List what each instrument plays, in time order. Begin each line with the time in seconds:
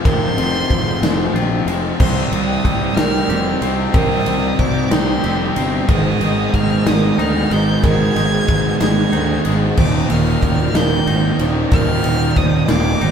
Already playing: clean electric guitar F3 G#3 C4 F4, analog synth pad C4 G#4 F5 G5
0.04 fingered electric bass F1, overdriven electric guitar F2 C3 F3, clean electric guitar F2, felt piano A#4, violin C6, kick, ride
0.37 fingered electric bass F1, overdriven electric guitar F2 C3 F3, clean electric guitar C3, ride
0.69 fingered electric bass F1, clean electric guitar F3, felt piano C5, kick, ride
1.02 fingered electric bass F1, overdriven electric guitar F2 C3 F3, clean electric guitar C4, snare, ride
1.34 fingered electric bass A#1, overdriven electric guitar F2 C3 F3, clean electric guitar F4, ride
1.66 fingered electric bass F1, overdriven electric guitar F2 C3 F3, clean electric guitar G#3, ride
1.99 fingered electric bass C2, overdriven electric guitar C3 G3 C4, clean electric guitar C3, felt piano C5, analog synth pad D#5 G5 A#5, violin C6, kick, crash
2.32 fingered electric bass C2, overdriven electric guitar C3 G3 C4, clean electric guitar G3, violin D#6, ride
2.65 fingered electric bass C2, clean electric guitar G3, kick, ride
2.95 fingered electric bass C2, overdriven electric guitar C3 G3 C4, clean electric guitar D#4, felt piano A#4, violin F6, snare, ride
3.29 fingered electric bass F1, overdriven electric guitar C3 G3 C4, clean electric guitar G4, ride
3.61 fingered electric bass C2, overdriven electric guitar C3 G3 C4, clean electric guitar C4, felt piano C5, ride
3.94 fingered electric bass C2, clean electric guitar C3, overdriven electric guitar C3 G3 C4, felt piano A#4, violin D#6, kick, ride
4.26 fingered electric bass C2, overdriven electric guitar C3 G3 C4, clean electric guitar G3, ride
4.59 fingered electric bass C2, clean electric guitar G3, felt piano C5, violin D6, kick, ride
4.90 fingered electric bass C2, overdriven electric guitar C3 G3 C4, clean electric guitar D#4, violin C6, snare, ride
5.23 fingered electric bass F1, overdriven electric guitar C3 G3 C4, clean electric guitar G4, ride
5.55 fingered electric bass G1, overdriven electric guitar C3 G3 C4, clean electric guitar C4, ride
5.88 fingered electric bass G#1, overdriven electric guitar G#2 D#3 G#3, clean electric guitar G#2, analog synth pad B3 G#5, felt piano B4, violin D#6, kick, ride
6.21 fingered electric bass G#1, overdriven electric guitar G#2 D#3 G#3, clean electric guitar D#3, ride
6.54 fingered electric bass G#1, violin F6, kick, ride
6.85 fingered electric bass G#1, overdriven electric guitar G#2 D#3 G#3, felt piano A#4, violin D#6, snare, ride
7.18 fingered electric bass D2, overdriven electric guitar G#2 D#3 G#3, clean electric guitar D#4, violin F6, ride
7.50 fingered electric bass G#1, overdriven electric guitar G#2 D#3 G#3, clean electric guitar G#3, felt piano B4, violin G6, ride
7.83 fingered electric bass G#1, overdriven electric guitar G#2 D#3 G#3, clean electric guitar G#2, felt piano A#4, violin G#6, kick, ride
8.15 fingered electric bass G#1, overdriven electric guitar G#2 D#3 G#3, ride
8.48 fingered electric bass G#1, felt piano B4, kick, ride
8.80 fingered electric bass G#1, overdriven electric guitar G#2 D#3 G#3, violin G#6, snare, ride
9.12 fingered electric bass D2, overdriven electric guitar G#2 D#3 G#3, clean electric guitar D#4, ride
9.45 fingered electric bass G#1, overdriven electric guitar G#2 D#3 G#3, clean electric guitar G#3, ride
9.77 fingered electric bass D#1, overdriven electric guitar D#2 A#2 D#3, clean electric guitar D#2, analog synth pad D#4 D#5 G5, felt piano C5, violin D6, kick, crash
10.10 fingered electric bass D#1, overdriven electric guitar D#2 A#2 D#3, clean electric guitar A#2, violin F6, ride
10.42 fingered electric bass D#1, clean electric guitar D#3, kick, ride
10.74 fingered electric bass D#1, overdriven electric guitar D#2 A#2 D#3, clean electric guitar A#3, felt piano A#4, violin G6, snare, ride
11.07 fingered electric bass G#1, overdriven electric guitar D#2 A#2 D#3, clean electric guitar D#4, ride
11.38 fingered electric bass D#1, overdriven electric guitar D#2 A#2 D#3, clean electric guitar G3, felt piano C5, ride
11.71 fingered electric bass D#1, overdriven electric guitar D#2 A#2 D#3, clean electric guitar D#2, felt piano A#4, violin F6, kick, ride
12.03 fingered electric bass D#1, overdriven electric guitar D#2 A#2 D#3, clean electric guitar A#2, ride
12.36 fingered electric bass D#1, clean electric guitar D#3, felt piano C5, violin D#6, kick, ride
12.68 fingered electric bass D#1, overdriven electric guitar D#2 A#2 D#3, clean electric guitar A#3, violin D6, snare, ride
13.00 fingered electric bass G#1, overdriven electric guitar D#2 A#2 D#3, clean electric guitar D#4, ride